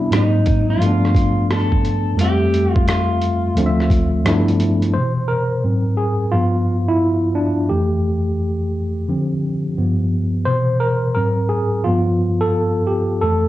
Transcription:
Already playing: tine electric piano C3 G3 B3 D4 E4
0.10 tine electric piano G#2 F#3 A#3 C4, clean electric guitar D#4, cross-stick, closed hi-hat
0.15 tine electric piano D#4
0.46 kick, closed hi-hat
0.70 clean electric guitar F4
0.77 tine electric piano G2 F3
0.82 tine electric piano A3 B3, closed hi-hat
0.86 tine electric piano D4
1.05 cross-stick
1.15 kick, closed hi-hat
1.51 clean electric guitar A4, cross-stick, closed hi-hat
1.72 kick
1.85 closed hi-hat
2.15 tine electric piano F2 G3
2.19 tine electric piano A3 C4, clean electric guitar G4, closed hi-hat
2.24 tine electric piano E5
2.54 closed hi-hat
2.73 clean electric guitar F4, kick
2.87 clean electric guitar F4, cross-stick, closed hi-hat
3.21 closed hi-hat
3.55 tine electric piano D2 F3 A3 C4, closed hi-hat
3.59 tine electric piano D4
3.66 tine electric piano E5
3.80 cross-stick
3.90 kick, closed hi-hat
4.24 tine electric piano G2 F3 A3 B3 D4, cross-stick, closed hi-hat
4.28 tine electric piano E4
4.48 closed hi-hat
4.60 closed hi-hat
4.82 closed hi-hat
4.94 tine electric piano B2 C3 E3 C5
5.28 tine electric piano A#4
5.64 tine electric piano G#2 F#3 C4
5.97 tine electric piano G#4
6.32 tine electric piano G2 F3 B3 F4
6.88 tine electric piano E4
7.35 tine electric piano D4
7.69 tine electric piano F2 E3 A3 G4
9.08 tine electric piano D3 F3 C4
9.77 tine electric piano G2 F3 B3
10.45 tine electric piano B2 C3 E3 C5
10.80 tine electric piano A#4
11.14 tine electric piano G#2 F#3 C4 A#4
11.49 tine electric piano G#4
11.84 tine electric piano G2 F3 B3 F4
12.41 tine electric piano A4
12.87 tine electric piano G4
13.21 tine electric piano F2 E3 A3 A4

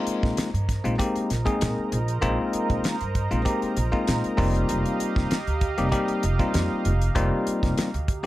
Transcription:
Already playing: tine electric piano G#3 A#3 C4 D#4 F4, analog synth pad A#4 C5 D#5 A#5
0.07 muted upright bass stroke, closed hi-hat
0.23 upright bass A#1, kick, snare
0.37 muted upright bass stroke, snare, closed hi-hat
0.54 upright bass G2, closed hi-hat
0.69 kick, snare, closed hi-hat
0.84 upright bass A#1, tine electric piano G#3 A#3 C4 D#4 F4, closed hi-hat
0.98 tine electric piano G#3 A#3 C4 D#4 G4, kick, closed hi-hat
1.16 muted upright bass stroke, closed hi-hat
1.30 upright bass A#1, snare, closed hi-hat
1.45 tine electric piano G#3 A#3 C4 D#4 G#4, kick, closed hi-hat
1.61 upright bass A#2, snare, closed hi-hat
1.78 muted upright bass stroke
1.92 upright bass A#1, closed hi-hat
2.08 closed hi-hat
2.21 upright bass A#1, tine electric piano G#3 A#3 C4 D#4 F4, kick, closed hi-hat
2.53 muted upright bass stroke, closed hi-hat
2.70 upright bass A#1, kick, closed hi-hat
2.84 muted upright bass stroke, snare, closed hi-hat
3.00 upright bass G2, closed hi-hat
3.15 kick, closed hi-hat
3.31 upright bass A#1, tine electric piano G#3 A#3 C4 D#4 F4, closed hi-hat
3.45 tine electric piano G#3 A#3 C4 D#4 G4, kick, closed hi-hat
3.62 muted upright bass stroke, closed hi-hat
3.77 upright bass A#1, closed hi-hat
3.92 tine electric piano G#3 A#3 C4 D#4 F4, kick
4.07 upright bass A#2, snare, closed hi-hat
4.24 muted upright bass stroke, closed hi-hat
4.37 upright bass F1, tine electric piano G3 A#3 C4 D#4 F4, analog synth pad G4 D#5 F5, kick, open hi-hat
4.55 closed hi-hat
4.69 upright bass F1, closed hi-hat
4.86 closed hi-hat
5.00 muted upright bass stroke, closed hi-hat
5.16 upright bass F1, kick, snare
5.31 muted upright bass stroke, snare, closed hi-hat
5.47 upright bass D2, closed hi-hat
5.61 kick, closed hi-hat
5.78 upright bass F1, tine electric piano G3 A#3 C4 D#4 G4, closed hi-hat
5.92 tine electric piano G3 A#3 C4 D#4 G4, kick, closed hi-hat
6.08 muted upright bass stroke, closed hi-hat
6.23 upright bass F1, closed hi-hat
6.39 tine electric piano G3 A#3 C4 D#4 F4, kick, closed hi-hat
6.54 upright bass F2, snare, closed hi-hat
6.71 muted upright bass stroke
6.85 upright bass F1, closed hi-hat
7.01 closed hi-hat
7.15 upright bass F1, tine electric piano G3 A#3 C4 D#4 F4, kick, closed hi-hat
7.47 muted upright bass stroke, closed hi-hat
7.63 upright bass F1, kick, snare, closed hi-hat
7.78 muted upright bass stroke, snare, closed hi-hat
7.94 upright bass D2, closed hi-hat
8.08 kick, closed hi-hat

